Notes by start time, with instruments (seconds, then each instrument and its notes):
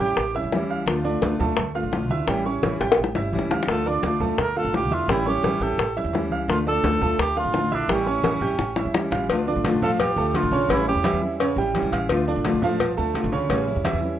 0.00 upright bass A1, steel-string acoustic guitar G3 C#4 E4, grand piano G4 G5 G6, cor anglais G4, high bongo, high conga
0.17 upright bass A1, muted steel-string acoustic guitar stroke, high bongo, high conga
0.35 steel-string acoustic guitar G3 C#4 E4, grand piano E4 E5 E6, high bongo, high conga
0.44 upright bass E2
0.52 steel-string acoustic guitar E3 G3 C#4 E4, high bongo, low bongo, high conga
0.69 upright bass C#2, grand piano F5 F6
0.86 upright bass D2, steel-string acoustic guitar D3 A3 D4 F4, high bongo, high conga
1.04 steel-string acoustic guitar A3 D4 F4, grand piano D4 D5 D6, high bongo, high conga
1.21 upright bass D2, steel-string acoustic guitar D3 A3 D4 F4, high bongo, high conga
1.39 upright bass D2, grand piano A3 A4 A5, steel-string acoustic guitar A3 D4 F4, high bongo, high conga, low conga
1.57 upright bass D2, muted steel-string acoustic guitar stroke, high bongo, high conga, low conga
1.75 steel-string acoustic guitar A3 D4 F4, grand piano F4 F5 F6, high bongo, high conga
1.83 upright bass A1
1.91 steel-string acoustic guitar D3 A3 D4 F4, high bongo, low bongo, high conga
2.09 upright bass D2, grand piano E4 E5 E6, high conga
2.27 upright bass A1, steel-string acoustic guitar E3 G3 C#4 E4, grand piano G3 G4 G5, high bongo, high conga
2.45 steel-string acoustic guitar G3 C#4 E4, grand piano C#4 C#5 C#6, high bongo
2.63 upright bass A1, steel-string acoustic guitar E3 G3 C#4 E4, high bongo, high conga
2.80 upright bass A1, steel-string acoustic guitar G3 C#4 E4, grand piano G4 G5 G6, high bongo
2.92 high bongo
2.98 upright bass A1, muted steel-string acoustic guitar stroke, high conga
3.04 low bongo
3.15 upright bass G1, steel-string acoustic guitar G3 C#4 E4, grand piano E4 E5 E6, low bongo, high conga
3.33 upright bass A1, steel-string acoustic guitar E3 G3 C#4 E4, high conga
3.39 low bongo
3.50 upright bass C#2, grand piano F5 F6, low bongo, high conga
3.63 low bongo
3.68 upright bass D2, steel-string acoustic guitar D3 A3 D4 F4, cor anglais A4, high bongo, high conga
3.86 steel-string acoustic guitar A3 D4 F4, grand piano D4 D5 D6, cor anglais D5, high bongo, high conga
4.02 upright bass D2, steel-string acoustic guitar D3 A3 D4 F4, high bongo, high conga
4.20 upright bass D2, grand piano A3 A4 A5, steel-string acoustic guitar A3 D4 F4, high bongo, high conga, low conga
4.38 upright bass D2, cor anglais A#4, muted steel-string acoustic guitar stroke, high bongo, high conga, low conga
4.56 steel-string acoustic guitar A3 D4 F4, grand piano F4 F5 F6, cor anglais A4, high bongo, high conga
4.65 upright bass A1
4.74 steel-string acoustic guitar D3 A3 D4 F4, cor anglais G4, high bongo, low bongo, high conga
4.91 upright bass E2, grand piano E4 E5 E6, cor anglais F4, high conga
5.08 upright bass A1, steel-string acoustic guitar E3 G3 C#4 E4, grand piano G3 G4 G5, cor anglais E4, high bongo
5.26 steel-string acoustic guitar G3 C#4 E4, grand piano C#4 C#5 C#6, cor anglais G4, high bongo
5.43 upright bass A1, steel-string acoustic guitar E3 G3 C#4 E4, high bongo, high conga
5.60 upright bass A1, steel-string acoustic guitar G3 C#4 E4, grand piano G4 G5 G6, cor anglais A4, high bongo, high conga
5.78 upright bass A1, muted steel-string acoustic guitar stroke, high bongo, high conga
5.96 steel-string acoustic guitar G3 C#4 E4, grand piano E4 E5 E6, high bongo, high conga
6.04 upright bass E2
6.13 steel-string acoustic guitar E3 G3 C#4 E4, high bongo, low bongo, high conga
6.31 upright bass C#2, grand piano F5 F6, high conga
6.48 upright bass D2, steel-string acoustic guitar D3 A3 D4 F4, cor anglais F4, high bongo
6.66 steel-string acoustic guitar A3 D4 F4, grand piano D4 D5 D6, cor anglais A4, high bongo, high conga
6.83 upright bass D2, steel-string acoustic guitar D3 A3 D4 F4, high bongo, high conga
7.01 upright bass D2, grand piano A3 A4 A5, steel-string acoustic guitar A3 D4 F4, high bongo, high conga, low conga
7.19 upright bass D2, cor anglais G4, muted steel-string acoustic guitar stroke, high bongo
7.35 steel-string acoustic guitar A3 D4 F4, grand piano F4 F5 F6, cor anglais F4, high bongo, high conga
7.45 upright bass A1
7.53 steel-string acoustic guitar D3 A3 D4 F4, high bongo, low bongo, high conga
7.71 upright bass A#1, cor anglais D4, grand piano E4 E5 E6, high conga
7.88 upright bass A1, steel-string acoustic guitar E3 G3 C#4 E4, grand piano G3 G4 G5, high bongo, high conga
7.93 cor anglais C#4
8.06 steel-string acoustic guitar G3 C#4 E4, grand piano C#4 C#5 C#6, high bongo, high conga
8.23 upright bass A1, steel-string acoustic guitar E3 G3 C#4 E4, high bongo, high conga
8.41 upright bass A1, steel-string acoustic guitar G3 C#4 E4, grand piano G4 G5 G6
8.58 upright bass A1, muted steel-string acoustic guitar stroke, low bongo, high conga
8.76 steel-string acoustic guitar G3 C#4 E4, grand piano E4 E5 E6, low bongo, high conga
8.85 upright bass E2
8.94 steel-string acoustic guitar E3 G3 C#4 E4, low bongo, high conga
9.11 upright bass A1, grand piano F4 F5 F6, low bongo, high conga
9.29 upright bass D2, steel-string acoustic guitar D3 A3 D4 F4, cowbell, high conga
9.47 steel-string acoustic guitar A3 D4 F4, grand piano D4 D5 D6, high conga
9.56 upright bass A1
9.64 steel-string acoustic guitar D3 A3 D4 F4, cowbell, high conga
9.72 upright bass A1
9.82 grand piano F3 F4 F5, steel-string acoustic guitar A3 D4 F4, cor anglais A4, high conga, low conga
10.00 cor anglais G4, muted steel-string acoustic guitar stroke, cowbell, high conga, low conga
10.16 upright bass D2, grand piano A3 A4 A5, steel-string acoustic guitar A3 D4 F4, high conga
10.28 cor anglais G4
10.34 steel-string acoustic guitar D3 A3 D4 F4, cor anglais F4, cowbell, high conga
10.43 upright bass A1
10.51 upright bass A#1, grand piano C#3 C#4 C#5, high conga
10.69 upright bass A1, grand piano C#3 C#4 C#5, steel-string acoustic guitar E3 G3 C#4 E4, cor anglais E4, cowbell, high conga
10.86 steel-string acoustic guitar G3 C#4 E4, cor anglais G4, high conga
10.95 upright bass E2
11.04 steel-string acoustic guitar E3 G3 C#4 E4, grand piano E3 E4 E5, cowbell, high conga
11.13 upright bass E2
11.22 steel-string acoustic guitar G3 C#4 E4, high conga
11.40 grand piano C#3 C#4 C#5, muted steel-string acoustic guitar stroke, cowbell, high conga
11.56 upright bass A1, grand piano G3 G4 G5, steel-string acoustic guitar G3 C#4 E4, high conga
11.74 steel-string acoustic guitar E3 G3 C#4 E4, cowbell, high conga
11.83 upright bass E2
11.92 upright bass A1, grand piano F5 F6, cowbell, high conga
12.09 upright bass D2, steel-string acoustic guitar D3 A3 D4 F4, cowbell
12.27 steel-string acoustic guitar A3 D4 F4, grand piano D4 D5 D6, high conga
12.36 upright bass A1
12.45 steel-string acoustic guitar D3 A3 D4 F4, cowbell, high conga
12.54 upright bass A1
12.62 grand piano F3 F4 F5, steel-string acoustic guitar A3 D4 F4, high conga, low conga
12.80 muted steel-string acoustic guitar stroke, cowbell, high conga, low conga
12.97 upright bass D2, grand piano A3 A4 A5, steel-string acoustic guitar A3 D4 F4, high conga
13.14 steel-string acoustic guitar D3 A3 D4 F4, cowbell, high conga
13.24 upright bass A1
13.32 upright bass D2, grand piano C#3 C#4 C#5, high conga
13.49 upright bass A1, grand piano C#3 C#4 C#5, steel-string acoustic guitar E3 G3 C#4 E4, cowbell
13.67 steel-string acoustic guitar G3 C#4 E4, high conga
13.76 upright bass E2
13.84 grand piano E3 E4 E5, steel-string acoustic guitar E3 G3 C#4 E4, cowbell, high conga
13.93 upright bass E2
14.02 steel-string acoustic guitar G3 C#4 E4, high conga